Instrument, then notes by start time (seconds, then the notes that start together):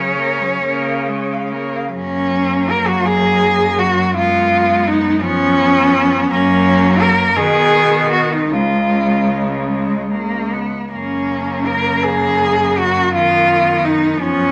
cello
Already playing: C#3 F#3 C#4 C#5
0.17 A#3 A#4
0.42 F#3 C#5
0.63 C#3 A#3 C#5
0.88 F5
1.08 G#3 C#5
1.32 F5
1.52 A#3 C#5
1.76 F5
1.93 F#2 F#3 A#3 C#4
2.70 A#4
2.87 F#4
3.05 G#4
3.79 F#4
4.15 G#3 B3 F4
4.87 D#4
5.21 F3 B3 C#4
6.29 F#2 F#3 A#3 C#4
7.01 A#4
7.36 B2 D#3 B3 G#4
8.13 F#4
8.32 D#4
8.51 C#2 C#3 G#3 F4
9.72 G#3
10.12 A#3
10.53 B3
10.91 F#2 C#3 A#3 C#4
11.66 A#4
12.04 G#4
12.78 F#4
13.13 D#3 B3 F4
13.85 D#4
14.20 F3 B3 C#4